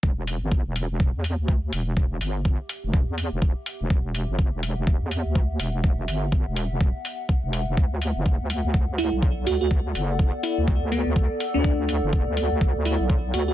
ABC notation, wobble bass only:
X:1
M:4/4
L:1/16
Q:"Swing 16ths" 1/4=124
K:Em
V:1 name="Wobble bass" clef=bass
E,,,3 G,,,2 E,,,2 E,,,2 E,,2 D,,3 E,,,2- | E,,,2 G,,,3 z2 E,,,2 E,,2 E,,,2 z2 E,,, | E,,,3 G,,,2 E,,,2 E,,,2 E,,2 D,,3 E,,,2- | E,,,2 G,,,3 E,,,2 E,,, E,,, z4 E,,,2 E,,, |
D,,3 F,,,2 D,,2 D,,2 D,,2 B,,,3 D,,2- | D,,2 F,,,3 z2 D,,2 D,,2 D,,2 z2 D,, | D,,3 F,,,2 D,,2 D,,2 D,,2 B,,,3 D,,2 |]